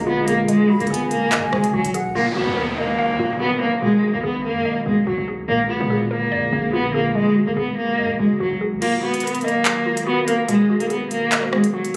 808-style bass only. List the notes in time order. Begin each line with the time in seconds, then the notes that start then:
Already playing: A#1
0.80 G#1
0.90 G#1
1.32 G#2
1.43 G#1
1.53 F#1
1.73 G#1
1.85 G#1
2.05 D#2
2.15 D#1
2.36 D#2
2.47 D#2
2.99 F#1
3.10 D#2
3.19 D#1
3.61 D1
4.14 B1
4.24 A#1
4.44 F#2
4.86 B1
5.07 B1
5.18 B1
5.39 D#2
5.49 A#1
5.69 B1
5.80 A#2
6.32 F2
6.53 A#1
7.47 G#1
7.57 G#1
7.99 G#2
8.10 G#1
8.19 F#1
8.40 G#1
8.51 G#1
8.72 D#2